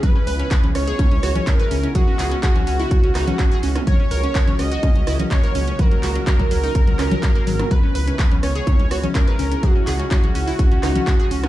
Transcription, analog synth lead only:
X:1
M:4/4
L:1/8
Q:1/4=125
K:C#dor
V:1 name="Analog synth lead"
B3 c3 A2 | F2 F6 | c3 d3 c2 | A2 A6 |
B3 c3 A2 | F2 F6 |]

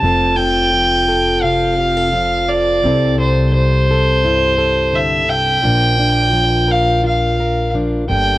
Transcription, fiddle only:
X:1
M:4/4
L:1/8
Q:1/4=86
K:F
V:1 name="Fiddle"
a g3 f3 d- | d c c4 e g- | g3 f f2 z g |]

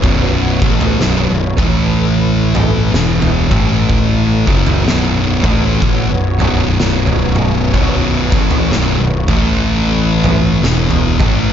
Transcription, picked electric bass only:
X:1
M:4/4
L:1/16
Q:"Swing" 1/4=62
K:Amix
V:1 name="Picked electric bass" clef=bass
B,,,,2 A,,,2 B,,,, B,,,, A,,,6 E,,,2 A,,,2- | A,,,2 F,,,2 B,,,,2 A,,,2 A,,, B,,,, B,,,,6 | B,,,,2 A,,,2 B,,,, B,,,, A,,,6 E,,,2 A,,,2 |]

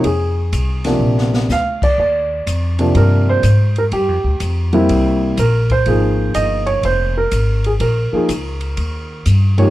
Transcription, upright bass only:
X:1
M:4/4
L:1/8
Q:"Swing" 1/4=124
K:Fm
V:1 name="Upright bass" clef=bass
F,,2 C,,2 B,,,2 =D,,2 | E,,2 F,,2 G,,2 A,,2 | (3G,, F,, =D,, F,,2 C,,2 B,,,2 | A,,,2 G,,,2 F,,,2 A,,,2 |
B,,, z D,,2 E,,2 G,,2 |]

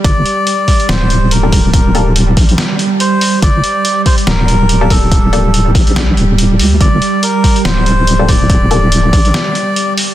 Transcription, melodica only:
X:1
M:4/4
L:1/8
Q:"Swing 16ths" 1/4=142
K:Gm
V:1 name="Melodica"
d4 c2 B2 | B2 z4 c2 | d3 c B3 A- | A3 z4 z |
d2 B2 c3 d- | d6- d z |]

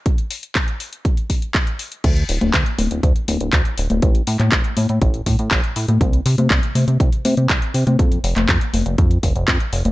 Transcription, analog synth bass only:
X:1
M:4/4
L:1/16
Q:1/4=121
K:Dm
V:1 name="Analog synth bass" clef=bass
z16 | D,,2 D,,, D,,, D,, z D,,, D,,, D,, z D,,, D,,, D,, z D,,, D,,, | A,,,2 A,, A,, A,,, z A,, A,, A,,,2 A,, A,, A,,, z A,, A,, | C,,2 C, C, C,, z C, C, C,, z C, C, C,, z C, C, |
F,,2 F,,, F,,, F,, z F,,, F,,, F,,2 F,,, F,,, F,, z F,,, F,,, |]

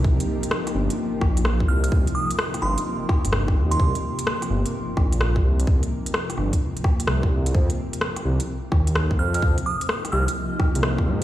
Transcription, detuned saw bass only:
X:1
M:4/4
L:1/16
Q:"Swing 16ths" 1/4=128
K:Cm
V:1 name="Detuned saw bass" clef=bass
C,, z4 z G,,, z3 B,,,4 C,,2 | C,, z4 z G,,, z4 G,,,3 E,,2 | C,, z4 z G,,, z3 B,,,4 C,,2 | C,, z4 z G,,, z4 z C,,4 |
F,, z4 z C,, z3 E,,4 F,,2 | F,, z4 z C,, z4 C,,3 A,,2 |]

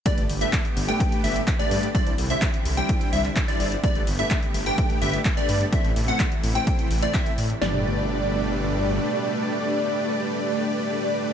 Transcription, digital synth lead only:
X:1
M:4/4
L:1/16
Q:1/4=127
K:G
V:1 name="Digital synth lead"
d z2 e z3 g3 e z2 d2 z | d z2 e z3 g3 e z2 d2 z | d z2 e z3 g3 e z2 d2 z | e z2 f z3 g3 z d e z3 |
d16- | d16 |]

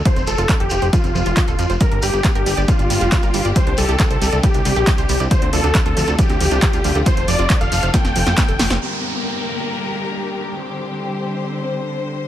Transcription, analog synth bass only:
X:1
M:4/4
L:1/16
Q:1/4=137
K:Gm
V:1 name="Analog synth bass" clef=bass
z F,,, F,,, F,,, z F,,, F,,, F,,, z F,,, F,,, F,,, z E,,, F,, F,,, | z G,,, G,,, G,,, z G,,, G,,, G,,, z G,,, G,,, F,,, z G,,, G,,, G,,, | z C,, C,, C,, z C,, C,, C,, z C,, C,, B,,, z C,, C,, C,, | z D,, D,, D,, z D,, D,, D,, z D,, D,, C,, z D,, D,, D,, |
z F,,, F,,, F,,, z F,,, F,,, F,,, z F,,, F,,, F,,, z F,,, F,,, F,,, | z16 | z16 |]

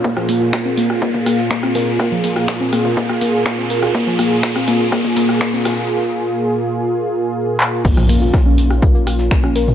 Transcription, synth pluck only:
X:1
M:4/4
L:1/16
Q:1/4=123
K:Fphr
V:1 name="Synth pluck"
B, F, B, F F C B, z B, B, B, z B, C B z | B, F, B, F F C B, z B, B, B, z B, C B z | B, F, B, F z C B, z B, B, B, z B, C B z | z16 |
B, F, B, F F D B, z B, B, B, z B, D B z |]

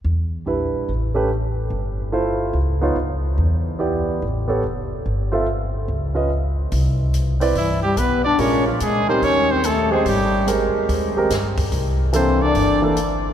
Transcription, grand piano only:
X:1
M:4/4
L:1/8
Q:"Swing" 1/4=144
K:Ephr
V:1 name="Grand piano"
z2 [G,DEB]2 z [A,^CGB] z2 | z2 [A,EFc]2 z [_C_EF_d] z2 | z2 [B,EGd]2 z [B,GA^c] z2 | z [CFAe] z3 [_DF_c_e] z2 |
z3 [CEBd] z4 | [_A,_DF_B] z2 [G,D_EB]3 z [A,CGc] | z2 [_A,CG_B]3 [A,CGB] z2 | z2 [E,_B,DA]3 [E,B,DA] z2 |]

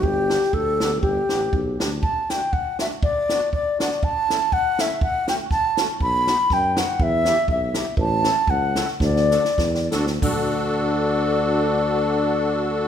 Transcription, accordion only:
X:1
M:2/4
L:1/8
Q:"Swing" 1/4=120
K:G
V:1 name="Accordion"
z [B,DG] z [B,DG] | z [B,DG] z [B,DG] | [K:D] z [A,DF] z [A,DF] | z [B,DF] z [B,DF] |
z [A,CE] z [A,CE] | z [A,CF] z [A,CF] | z [B,^DF] z [B,DF] | z [B,EG] z [B,EG] |
z [CEA] z [CEA] | z [DFA] z [DFA] | [DFA]4- | [DFA]4 |]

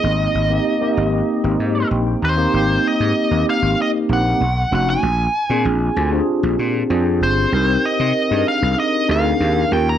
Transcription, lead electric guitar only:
X:1
M:4/4
L:1/16
Q:1/4=96
K:Ablyd
V:1 name="Lead electric guitar"
e12 z2 c2- | c2 e4 f2 e2 _g4 ^f a- | a6- a z6 z c2- | c2 e4 f2 e2 f4 g b |]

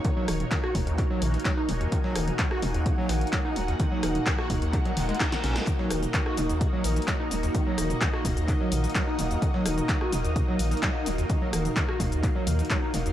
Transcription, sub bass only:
X:1
M:4/4
L:1/8
Q:1/4=128
K:Ebm
V:1 name="Sub bass" clef=bass
z E,,, z E,,, z B,,, z E,,, | z E,,, z E,,, z B,,, z E,,, | z E,,, z E,,, z E,,, z B,,, | z E,,, z E,,, z B,,, z E,,, |
z E,,, z E,,, z B,,, z E,,, | z E,,, z E,,, z B,,, z E,,, | z E,,, z E,,, z E,, z E,,, |]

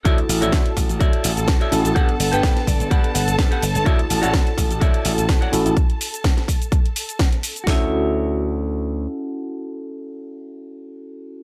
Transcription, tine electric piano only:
X:1
M:4/4
L:1/16
Q:"Swing 16ths" 1/4=126
K:D
V:1 name="Tine electric piano"
[EFA]3 [EFA]8- [EFA]3 [CEFA]2 | [B,DAf]3 [B,DB]12- [B,DB] | [EFA]3 [EFA]8- [EFA]3 [CEFA]2 | z16 |
[CEFA]16- | [CEFA]16 |]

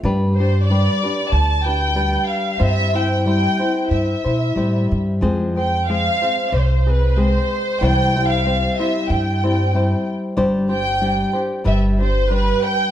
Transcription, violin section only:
X:1
M:4/4
L:1/16
Q:"Swing" 1/4=93
K:C
V:1 name="Violin section"
z2 c2 d4 a2 g4 f2 | e2 g2 g4 e6 z2 | z2 g2 f4 c2 B2 c4 | g3 f3 e2 g6 z2 |
z2 g4 z2 e2 c2 B2 g2 |]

